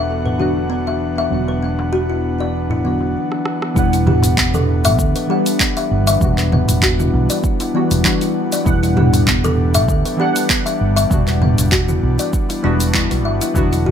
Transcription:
Already playing: E1 E3 B3 D4 F#4 F#5
0.26 B4, darbuka dum
0.38 D3 F#3 B3 D4 F#4
0.42 F#4
0.57 darbuka ka
0.70 B3
0.87 E5, darbuka tek
1.18 E5, darbuka ka
1.30 E1 D3 F#3 B3 D4
1.34 F#4
1.48 B4, darbuka tek
1.63 B3, darbuka ka
1.79 darbuka tek
1.93 F#4
2.10 E4
2.40 D5, darbuka ka, darbuka tek
2.70 E4, darbuka ka, darbuka tek, darbuka dum
2.84 D3 F#3 B3 D4 F#4
3.00 darbuka ka
3.32 cross-stick
3.46 cross-stick
3.62 cross-stick
3.74 E1 E3 G3 B3 D4 E4 F#5, kick, shaker
3.93 E4, open hi-hat, shaker
4.07 G4, mid tom, darbuka dum
4.23 open hi-hat, darbuka tek, darbuka dum, shaker
4.38 B3, kick, clap, shaker
4.49 G3
4.54 A4, mid tom, shaker
4.68 darbuka ka
4.84 E5, open hi-hat, darbuka ka, darbuka tek, darbuka dum, shaker
4.99 D2, kick, shaker
5.16 B4, open hi-hat, shaker
5.27 E3 G3 B3 D4 G4 F#5
5.46 open hi-hat, darbuka ka, shaker
5.60 B3, kick, clap, shaker
5.77 E5, open hi-hat, darbuka tek, shaker
5.91 G1
6.07 E5, open hi-hat, shaker
6.20 E1 E3 G3 B3 D4, kick, mid tom, shaker
6.24 F#4
6.38 B4, clap, open hi-hat, shaker
6.52 B3, mid tom, darbuka dum
6.68 E1, open hi-hat, darbuka tek, darbuka dum, shaker
6.82 F#4, kick, clap, shaker
7.00 E4, mid tom, shaker
7.14 B1
7.29 D5, open hi-hat, darbuka ka, shaker
7.44 kick, shaker
7.60 E4, open hi-hat, darbuka tek, shaker
7.74 E3 G3 B3 D4 F#4
7.91 E1, open hi-hat, darbuka ka, shaker
8.04 E3 G3 B3 D4 F#4, kick, clap, shaker
8.21 E4, open hi-hat, shaker
8.52 D5, open hi-hat, darbuka ka, shaker
8.64 E1 E3 G3 B3 D4 E4 F#5, kick, shaker
8.83 E4, open hi-hat, shaker
8.96 G4, mid tom, darbuka dum
9.13 open hi-hat, darbuka tek, darbuka dum, shaker
9.27 B3, kick, clap, shaker
9.44 A4, mid tom, shaker
9.58 darbuka ka
9.74 E5, open hi-hat, darbuka ka, darbuka tek, darbuka dum, shaker
9.88 D2, kick, shaker
10.05 B4, open hi-hat, shaker
10.17 E3 G3 B3 D4 G4
10.21 F#5
10.36 open hi-hat, darbuka ka, shaker
10.50 B3, kick, clap, shaker
10.66 E5, open hi-hat, darbuka tek, shaker
10.81 G1
10.96 E5, open hi-hat, shaker
11.09 E1 E3 G3 B3 D4 F#4, kick, mid tom, shaker
11.28 B4, clap, open hi-hat, shaker
11.41 B3, mid tom, darbuka dum
11.58 E1, open hi-hat, darbuka tek, darbuka dum, shaker
11.72 F#4, kick, clap, shaker
11.88 E4, mid tom, shaker
12.03 B1
12.19 D5, open hi-hat, darbuka ka, shaker
12.33 kick, shaker
12.49 E4, open hi-hat, darbuka tek, shaker
12.63 E1 E3 G3 B3 D4 F#4
12.80 open hi-hat, darbuka ka, shaker
12.93 E3 G3 B3 D4 E4 F#4, kick, clap, shaker
13.11 B1 B4, open hi-hat, shaker
13.25 G1 E5
13.41 E4, open hi-hat, darbuka ka, shaker
13.54 E1 D3 E3 F#3 B3 D4 E4 F#4, kick, shaker
13.68 B3
13.73 E4, open hi-hat, shaker
13.83 F#4, mid tom, darbuka dum

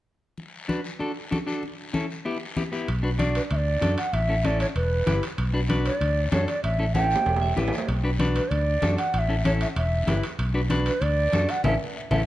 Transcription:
0.38 high conga, long guiro
0.68 D4 F#4 B4, high conga, short guiro
0.84 short guiro
0.99 D4 F#4 A4, high conga, long guiro
1.31 D4 F#4 A4, high conga, short guiro
1.47 D4 F#4 A4, short guiro
1.63 high conga, long guiro
1.93 C#4 E4 A4, high conga, short guiro
2.10 short guiro
2.25 B3 E4 G4, high conga, long guiro
2.56 B3 E4 G4, high conga, short guiro
2.72 B3 E4 G4, short guiro
2.88 B1, high conga, high timbale, long guiro
3.03 D4 F#4 B4
3.19 D4 F#4 D5, high conga, high timbale, short guiro
3.35 B4, high timbale, short guiro
3.51 D2 E5, high conga, high timbale, long guiro
3.56 D5
3.81 F#2 D4 F#4 A4, high conga, high timbale, short guiro
3.98 F#5, high timbale, short guiro
4.13 A1 E5, high conga, high timbale, long guiro
4.28 C#4 E4 A4
4.44 C#4 E4 A4 D5, high conga, high timbale, short guiro
4.60 C#5, high timbale, short guiro
4.76 E1 B4, high conga, high timbale, long guiro
5.06 G1 E4 G4 B4, high conga, high timbale, low timbale, short guiro
5.23 high timbale, short guiro
5.38 B1, high conga, high timbale, long guiro
5.53 D4 F#4 B4
5.69 D4 F#4 B4, high conga, high timbale, short guiro
5.85 D5, high timbale, short guiro
6.01 D2, high conga, high timbale, long guiro
6.32 F#2 D4 F#4 A4 C#5, high conga, high timbale, low timbale, short guiro
6.48 D5, high timbale, short guiro
6.64 A1 E5, high conga, high timbale, long guiro
6.79 C#4 E4 A4
6.94 C#4 E4 A4 G5, high conga, high timbale, short guiro
7.10 short guiro
7.16 low timbale
7.26 E1, high conga, low timbale, long guiro
7.36 low timbale
7.41 E5
7.56 A1 E4 G4 B4 G5, high conga, low timbale, short guiro
7.68 low timbale
7.73 short guiro
7.78 low timbale
7.88 B1, high conga, high timbale, long guiro
8.03 D4 F#4 B4
8.19 D4 F#4 B4, high conga, high timbale, short guiro
8.35 B4, high timbale, short guiro
8.51 D2 D5, high conga, high timbale, long guiro
8.82 F#2 D4 F#4 A4, high conga, high timbale, low timbale, short guiro
8.98 F#5, high timbale, short guiro
9.13 A1 F#5, high conga, high timbale, long guiro
9.19 E5
9.29 C#4 E4 A4
9.45 C#4 E4 A4 C#5, high conga, high timbale, short guiro
9.61 E5, high timbale, short guiro
9.76 E1 E5, high conga, high timbale, long guiro
10.07 G1 E4 G4 B4, high conga, high timbale, low timbale, short guiro
10.23 high timbale, short guiro
10.39 B1, high conga, high timbale, long guiro
10.54 D4 F#4 B4
10.70 D4 F#4 B4, high conga, high timbale, short guiro
10.86 B4, high timbale, short guiro
11.01 D2 D5, high conga, high timbale, long guiro
11.33 F#2 D4 F#4 A4, high conga, high timbale, low timbale, short guiro
11.49 F#5, high timbale, short guiro
11.64 A1 C#4 E4 A4 E5, low conga, high timbale, long guiro
12.11 A1 C#4 E4 A4 E5, low conga, high timbale, long guiro

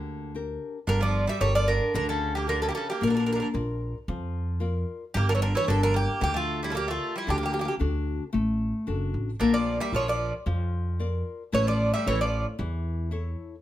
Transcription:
Already playing: D2 D3 A#3 G4
0.35 D4 G4 A#4
0.87 G1 D3 G3 A#4
1.01 F3 D5
1.27 G3 E5
1.40 G1 G3 G4 A4 A#4 C#5
1.55 F3 D5
1.68 D3 A#4
1.94 D2 D3 A#4
2.09 C#3 A4
2.35 A#3 G4
2.47 D3 G4 A4 A#4
2.62 C#3 A4
2.69 A#3 G4
2.75 C#3 A4
2.90 A#3 G4
3.01 A#1 A#3 A#4
3.07 D3 A#4
3.14 D3 A#4
3.19 D3
3.26 D3 A#4
3.33 D3 A#4
3.40 D3 A#4
3.54 A#1 F4 A#4 D5
4.08 F2 F3
4.60 F4 A#4 D5
5.14 G1 G3 A#3 G4
5.29 D3 A#4
5.35 E3 C#5
5.42 D3 A#4
5.55 E3 C#5
5.67 G1 D3 G4 A4 A#4 D5
5.83 D3 A#4
5.94 A#3 G4
6.21 D2 D3 A#3 G4
6.34 A3 F4
6.63 G3 E4
6.70 C#3 G4 A4
6.74 A#3 G4 A#4 D5
6.88 A3 F4
7.16 G3 E4
7.27 D2 D3 G4
7.38 A#3 G4
7.43 A#3 G4
7.53 A#3 G4
7.59 A#3 G4
7.65 A#3 G4
7.79 D2 D4 F#4 A4
8.33 A1 A3
8.87 F#1 D4 F#4 A4
9.14 A1
9.40 A#1 D3 A#3 A#4
9.54 F3 D5
9.80 G3 E5
9.93 A#1 F3 F4 A#4 C#5 D5
10.08 F3 D5
10.46 F2 F3
10.99 F4 A#4 D5
11.52 A1 E3 A3 C#5
11.67 F3 D5
11.94 G3 E5
12.06 A1 E3 E4 A4 C#5
12.21 F3 D5
12.59 E2 E3
13.11 E4 A4 C#5

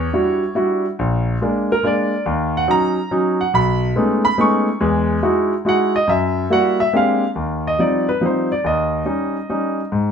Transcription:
Already playing: C#5
0.13 G3 D4 E4 F#4
0.55 G3 D4 E4 F#4
0.99 A#1
1.41 G#3 A#3 D4
1.72 A#4
1.83 G#3 A#3 D4 D5
2.26 D#2
2.57 F#5
2.68 F#3 C#4 D#4 A#5
3.11 F#3 C#4 D#4
3.41 F#5
3.54 B1 B5
3.96 G#3 A3 B3 C#4 D#4
4.25 B5
4.38 G#3 A3 B3 C#4 D#4 C#6
4.81 E2 G#3
5.22 G#3 D#4 E4 F#4
5.65 G#3 D#4 E4 F#4 F#5
5.96 D#5
6.08 F#2 E5
6.50 G3 A#3 E4 F#4 F#5
6.80 E5
6.93 G#3 A#3 C4 D4 G4 F5
7.35 D#2
7.67 D#5
7.79 F3 G3 C4 D#4 D5
8.09 B4
8.21 F3 G3 C4 D#4
8.26 C5
8.52 D5
8.64 D#2 D#5
9.05 G3 C#4 D#4
9.50 G3 C#4 D#4
9.92 G#2

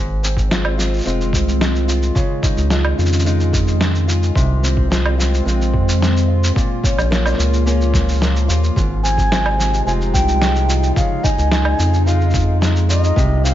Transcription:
Already playing: G#1 G#2 D#3 G#3 C4 F4
0.23 C4, cabasa
0.37 kick, cabasa
0.51 G#3 C4 F4, snare, cabasa
0.65 low woodblock
0.78 F4, snare, cabasa
0.94 cabasa
0.96 cabasa
0.98 cabasa
1.00 cabasa
1.03 cabasa
1.05 F1 G#3 C4 F4, cabasa
1.07 cabasa
1.21 cabasa
1.33 C2, kick, cabasa
1.48 cabasa
1.61 G#3, snare, cabasa
1.76 cabasa
1.88 F4, cabasa
2.03 cabasa
2.15 C#3 C#4, kick, cabasa
2.42 D#4, kick, cabasa
2.57 C#2, cabasa
2.70 G#3 D#4 F4, snare, cabasa
2.85 low woodblock
2.98 F2 F4, cabasa
3.06 cabasa
3.13 cabasa
3.19 cabasa
3.25 G#3 D#4 F4, cabasa
3.40 cabasa
3.53 kick, cabasa
3.68 cabasa
3.80 G#3, snare, cabasa
3.95 cabasa
4.07 F4, cabasa
4.23 cabasa
4.35 C2 C3 G#3 C4 F4, kick, cabasa
4.63 C4, cabasa
4.77 kick
4.90 G#3 C4 F4, snare, cabasa
5.06 low woodblock
5.18 F4, snare, cabasa
5.34 cabasa
5.45 A#1 G#3 C4 F4, cabasa
5.61 cabasa
5.74 F2, kick
5.89 cabasa
6.00 G#3, snare, cabasa
6.17 cabasa
6.28 F4
6.44 cabasa
6.56 A#2 C#3 F3 A#3, kick, cabasa
6.83 C#4, kick, cabasa
6.98 A#1, cabasa, low woodblock
7.11 A#3 C#4 F4, snare, cabasa
7.26 cabasa, low woodblock
7.33 snare
7.38 C#2 F4, cabasa
7.53 cabasa
7.66 A#3 C#4 F4, cabasa
7.81 cabasa
7.94 kick, snare, cabasa
8.09 cabasa
8.11 cabasa
8.13 cabasa
8.15 cabasa
8.18 cabasa
8.20 A#3, snare, cabasa
8.22 cabasa
8.36 cabasa
8.48 D#2 F4, cabasa
8.64 cabasa
8.76 G#1 G#2 C3 G#3 D#4, kick, cabasa
9.03 C4 G#5, cabasa
9.18 kick, cabasa
9.31 G#3 C4 F4, snare, cabasa
9.46 low woodblock
9.59 F4, snare, cabasa
9.74 cabasa
9.86 F1 G#3 C4 F4 G#5, cabasa
10.01 cabasa
10.13 C2 G5, kick, cabasa
10.28 cabasa
10.41 G#3, snare, cabasa
10.56 cabasa
10.68 F4, cabasa
10.83 cabasa
10.96 C#3 G#3 F5, kick, cabasa
11.23 D#4 G#5, kick, cabasa
11.38 C#2, cabasa
11.51 G#3 D#4 F4, snare, cabasa
11.65 low woodblock
11.79 F2 F4, cabasa
11.93 cabasa
12.06 G#3 D#4 F4 F5, cabasa
12.21 cabasa
12.30 kick, cabasa
12.34 cabasa
12.39 cabasa
12.61 G#3, snare, cabasa
12.76 cabasa
12.89 F4 D#5, cabasa
13.04 cabasa
13.16 C2 C3 F3 G#3, kick, cabasa
13.44 C4 F5, cabasa

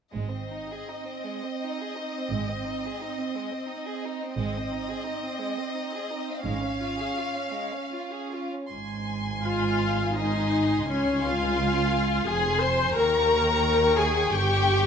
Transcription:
0.12 G#1 G#2 G#3 C4 D#5
0.30 C4
0.50 D#4
0.68 G#4
0.86 D#4
1.05 C4
1.24 G#3
1.42 C4
1.60 D#4
1.79 G#4
1.97 D#4
2.13 C4
2.30 G#1 G#2 G#3
2.49 C4
2.66 D#4
2.83 G#4
3.00 D#4
3.17 C4
3.33 G#3
3.51 C4
3.68 D#4
3.86 G#4
4.03 D#4
4.20 C4
4.36 G#1 G#2 G#3 C4 D#5
4.54 C4
4.72 D#4
4.88 G#4
5.05 D#4
5.22 C4
5.39 G#3
5.57 C4
5.75 D#4
5.92 G#4
6.10 D#4
6.28 C4
6.44 G#1 G#2 G#3 C#4 F5
6.61 C#4
6.79 F4
6.98 G#4
7.16 F4
7.34 C#4
7.52 G#3
7.70 C#4
7.92 F4
8.10 G#4
8.29 F4
8.51 C#4
8.70 G#1 G#2 G#5 C6
9.44 F4 F5
10.17 D#4 D#5 G#5 C6
10.88 C#2 C#4 C#5 G#5 C6
11.23 F4 F5
12.26 F1 F2 G#4 G#5 C6
12.60 C5 C6
12.94 D#2 A#4 G5 A#5 C#6
13.97 G#4 G#5
14.31 G1 G2 G4 G5 C#6

